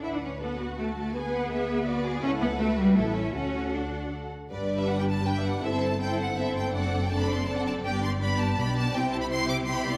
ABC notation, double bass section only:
X:1
M:3/4
L:1/8
Q:1/4=163
K:D
V:1 name="Double bass section" clef=bass
D,,6- | D,,6 | C,,4 A,,,2 | D,,4- D,, z |
[K:G] G,,,6 | G,,,6 | F,,,6 | G,,,4 B,,,2 |
C,,6 |]